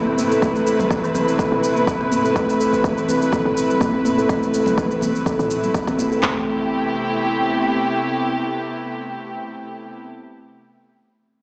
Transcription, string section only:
0.00 6.19 C3 medium
0.00 6.19 A3 medium
0.00 6.19 E4 medium
0.00 6.22 B4 medium
6.23 10.03 C3 medium
6.23 10.03 A3 medium
6.23 10.03 B3 medium
6.23 10.03 E4 medium
6.23 10.03 G4 medium

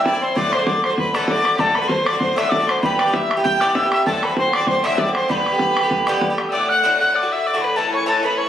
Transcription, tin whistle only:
0.22 0.35 C6 medium
0.36 0.53 D6 loud
0.52 0.68 C6 medium
0.66 0.85 D6 medium
0.84 0.97 C6 medium
0.99 1.17 B5 medium
1.15 1.28 A5 medium
1.29 1.61 D6 medium
1.59 1.76 A5 loud
1.75 1.89 B5 medium
1.88 2.08 C6 loud
2.06 2.17 D6 loud
2.17 2.34 C6 medium
2.36 2.51 E6 medium
2.49 2.68 D6 medium
2.67 2.81 C6 medium
2.81 3.01 B5 medium
2.99 3.15 D6 medium
3.14 3.30 E6 loud
3.44 3.62 G6 loud
3.60 3.77 D6 loud
3.75 3.91 E6 loud
3.92 4.04 E6 loud
4.05 4.25 A5 loud
4.24 4.37 B5 medium
4.38 4.56 C6 loud
4.54 4.69 D6 loud
4.68 4.87 C6 loud
4.85 5.01 E6 loud
5.00 5.15 D6 medium
5.16 5.32 C6 medium
5.30 6.22 B5 loud
6.48 6.54 E6 medium
6.53 6.70 D6 medium
6.69 6.99 F#6 medium
7.00 7.17 F#6 medium
7.16 7.34 D6 medium
7.32 7.48 E6 medium
7.46 7.58 D6 medium
7.56 7.62 C#6 medium
7.61 7.77 B5 medium
7.76 7.92 A5 medium
7.94 8.06 C#6 medium
8.08 8.23 A5 medium
8.24 8.39 B5 medium
8.38 8.49 C#6 loud

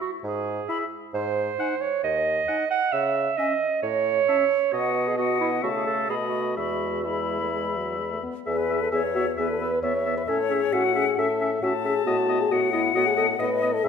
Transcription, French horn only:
0.69 0.85 E4 soft
1.59 1.75 D#4 soft
2.49 2.65 D#4 soft
3.38 3.54 C#4 soft
4.29 4.45 C#4 soft
4.73 5.15 B3 soft
5.18 5.63 B3 soft
5.64 6.09 A3 soft
6.09 6.58 A3 soft
6.56 7.04 G#3 soft
7.04 7.38 G#3 soft
7.41 7.46 A3 soft
7.52 7.78 G#3 soft
7.76 8.00 F#3 soft
7.99 8.14 G#3 soft
8.12 8.22 A3 soft
8.23 8.34 B3 soft
8.47 8.83 G#4 medium
8.81 8.92 A4 medium
8.92 9.02 G#4 medium
9.15 9.25 F#4 medium
9.38 9.49 G#4 medium
9.50 9.60 A4 medium
9.60 9.82 B4 medium
9.83 10.16 C#5 medium
10.18 10.22 B4 medium
10.28 10.52 A4 medium
10.50 10.74 G#4 medium
10.73 10.95 F#4 medium
10.96 11.17 G#4 medium
11.19 11.62 A4 medium
11.63 11.73 F#4 medium
11.85 12.06 G#4 medium
12.07 12.43 F#4 medium
12.41 12.53 G#4 medium
12.51 12.72 F#4 medium
12.73 12.96 E4 medium
12.95 13.08 F#4 medium
13.07 13.17 G#4 medium
13.17 13.27 A4 medium
13.39 13.75 B4 medium
13.74 13.85 A4 medium
13.83 13.88 G#4 medium

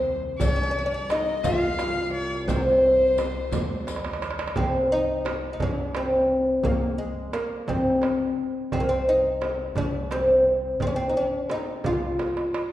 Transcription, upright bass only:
0.00 0.36 D#2 medium
0.40 1.40 C2 medium
1.44 1.77 D#2 medium
2.48 3.48 C2 medium
3.52 4.52 D#2 medium
4.57 5.56 C2 medium
5.60 6.60 C2 medium
6.64 6.97 C2 medium
7.68 8.01 C2 medium
8.73 9.73 C2 medium
9.76 10.77 C2 medium
10.80 11.13 C2 medium
11.85 12.18 C2 medium

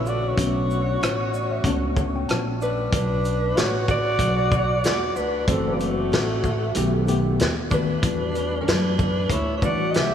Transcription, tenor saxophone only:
0.07 0.26 F#4 medium
0.26 2.30 F#4 medium
2.62 2.91 D4 medium
2.93 3.58 D4 medium
3.56 3.88 F#4 medium
3.88 4.80 F#4 medium
4.83 5.17 F#4 medium
5.16 5.47 D4 medium
5.48 5.75 C4 medium
5.73 5.81 G3 soft
5.80 7.08 A3 medium
7.71 8.57 D4 medium
8.61 8.68 C#4 medium
8.66 9.33 D4 medium
9.32 9.57 E4 medium
9.58 9.66 E4 medium
9.64 9.90 F#4 medium
9.90 9.98 F#4 medium
9.96 10.14 G4 medium

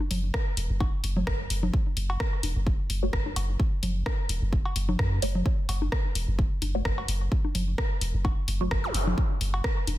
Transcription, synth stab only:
1.17 1.22 A3 medium
1.17 1.22 F#4 medium
1.17 1.22 C#5 medium
3.03 3.08 A3 medium
3.03 3.08 F#4 medium
3.03 3.08 C#5 medium
5.22 5.30 A3 medium
5.22 5.30 F#4 medium
5.22 5.30 C#5 medium
6.75 6.81 A3 medium
6.75 6.81 F#4 medium
6.75 6.81 C#5 medium
8.61 8.67 A3 medium
8.61 8.67 F#4 medium
8.61 8.67 C#5 medium

